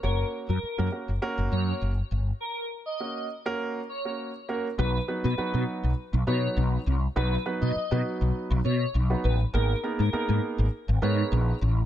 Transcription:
<<
  \new Staff \with { instrumentName = "Digital synth lead" } { \time 4/4 \key b \major \tempo 4 = 101 ais'8 r16 ais'8. r4 cis''8 r4 | ais'8 r16 dis''8. r4 cis''8. r8. | b'8 r16 b'8. r4 cis''8 r4 | b'8 r16 dis''8. r4 cis''8 r8 b'16 r16 |
ais'8 r16 ais'8. r4 cis''8 r4 | }
  \new Staff \with { instrumentName = "Grand piano" } { \time 4/4 \key b \major <ais cis' fis' cis''>8. r8 <ais cis' fis' ais'>16 <ais cis' fis' ais'>16 r16 <ais cis' fis' ais'>4~ <ais cis' fis' ais'>16 r8. | r4 <ais cis' fis' ais'>8 r16 <ais cis' fis' ais'>8 r8 <ais cis' fis' ais'>8 r16 <ais cis' fis' ais'>16 r16 | <fis b dis' fis' b'>16 r16 <fis b dis' fis' b'>16 r16 <fis b dis' fis' b'>8. r8. <fis b dis' fis' b'>8. r8. | <fis b dis' fis' b'>16 r16 <fis b dis' fis' b'>8 r16 <fis b dis' fis' b'>4~ <fis b dis' fis' b'>16 r8. <fis b dis' fis' b'>8 r16 |
<ais b dis' gis' ais'>16 r16 <ais b dis' gis' ais'>16 r16 <ais b dis' gis' ais'>8. r8. <b dis' gis' ais' b'>8. r8. | }
  \new Staff \with { instrumentName = "Fretless electric bass" } { \clef bass \time 4/4 \key b \major fis,,8 r16 fis,16 r16 fis,16 r16 fis,,16 r16 fis,,16 fis,8 fis,,8 g,,8 | r1 | b,,8 r16 b,16 r16 b,16 r16 b,,16 r16 b,,16 b,8 b,,8 c,8 | b,,8 r16 b,16 r16 b,16 r16 b,,16 r16 b,,16 b,8 b,,8 a,,8 |
gis,,8 r16 gis,16 r16 gis,16 r16 gis,,16 r16 gis,,16 gis,8 ais,,8 a,,8 | }
>>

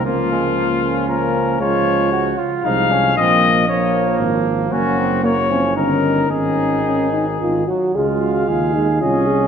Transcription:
<<
  \new Staff \with { instrumentName = "Trumpet" } { \time 3/4 \key bes \minor \tempo 4 = 115 f'2 bes'4 | \key des \major des''4. r8 f''4 | ees''4 des''4 r4 | ges'4 des''4 bes'4 |
aes'2~ aes'8 r8 | f''2 ees''4 | }
  \new Staff \with { instrumentName = "Flugelhorn" } { \time 3/4 \key bes \minor bes8 aes8 bes8 des'4. | \key des \major f'4 ges'8 f'8 ees'8 des'8 | c'8 r8 bes2 | des'8 c'8 bes8 des'8 ees'4 |
ees'2~ ees'8 r8 | f'4 aes'4 aes'4 | }
  \new Staff \with { instrumentName = "French horn" } { \time 3/4 \key bes \minor bes2 bes4 | \key des \major aes4. r8 aes4 | bes4 bes2 | bes4 bes8 c'8 des'4 |
des'4 des'8 ees'8 f'8 ges'8 | aes'8 ges'8 f'8 ees'8 f'8 aes'8 | }
  \new Staff \with { instrumentName = "Trombone" } { \clef bass \time 3/4 \key bes \minor f2 f4 | \key des \major f4. r8 f4 | f4 f2 | ges4 ges8 f8 ees4 |
ees2 ees8 ges8 | aes4. aes8 des'4 | }
  \new Staff \with { instrumentName = "Tuba" } { \clef bass \time 3/4 \key bes \minor des,2. | \key des \major des,4. r8 c,4 | bes,,2 aes,,4 | ges,,2 g,,4 |
aes,,2 aes,,8 r8 | des,4 ees,4 c,4 | }
>>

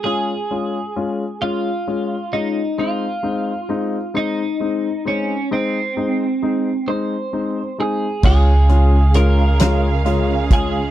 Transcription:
<<
  \new Staff \with { instrumentName = "Clean electric guitar" } { \time 6/8 \key des \major \tempo 4. = 44 aes'4. f'4 ees'8 | f'4. ees'4 des'8 | c'4. c''4 aes'8 | aes'4 bes'4. aes'8 | }
  \new Staff \with { instrumentName = "String section" } { \time 6/8 \key des \major r2. | r2. | r2. | <des aes aes' f''>2. | }
  \new Staff \with { instrumentName = "Grand piano" } { \time 6/8 \key des \major <aes des' f'>8 <aes des' f'>8 <aes des' f'>8 <aes des' f'>8 <aes des' f'>8 <aes des' f'>8 | <aes c' ees'>8 <aes c' ees'>8 <aes c' ees'>8 <aes c' ees'>8 <aes c' ees'>8 <aes c' ees'>8 | <aes c' ees'>8 <aes c' ees'>8 <aes c' ees'>8 <aes c' ees'>8 <aes c' ees'>8 <aes c' ees'>8 | <aes des' f'>8 <aes des' f'>8 <aes des' f'>8 <aes des' f'>8 <aes des' f'>8 <aes des' f'>8 | }
  \new Staff \with { instrumentName = "Upright bass" } { \clef bass \time 6/8 \key des \major r2. | r2. | r2. | des,2. | }
  \new DrumStaff \with { instrumentName = "Drums" } \drummode { \time 6/8 r4. r4. | r4. r4. | r4. r4. | <cymc bd>8 hh8 hh8 <hh sn>8 hh8 <hh bd>8 | }
>>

